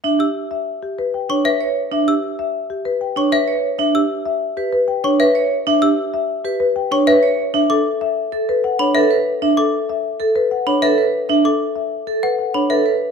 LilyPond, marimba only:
\new Staff \with { instrumentName = "Marimba" } { \time 6/4 \key e \dorian \tempo 4 = 192 e''8 g'8 r8 e''8 r8 g'8 b'8 g''8 cis''8 b'8 r4 | e''8 g'8 r8 e''8 r8 g'8 b'8 g''8 cis''8 b'8 r4 | e''8 g'8 r8 e''8 r8 g'8 b'8 g''8 cis''8 b'8 r4 | e''8 g'8 r8 e''8 r8 g'8 b'8 g''8 cis''8 b'8 r4 |
e''8 a'8 r8 e''8 r8 a'8 b'8 fis''8 cis''8 b'8 r4 | e''8 a'8 r8 e''8 r8 a'8 b'8 fis''8 cis''8 b'8 r4 | e''8 a'8 r8 e''8 r8 a'8 b'8 fis''8 cis''8 b'8 r4 | }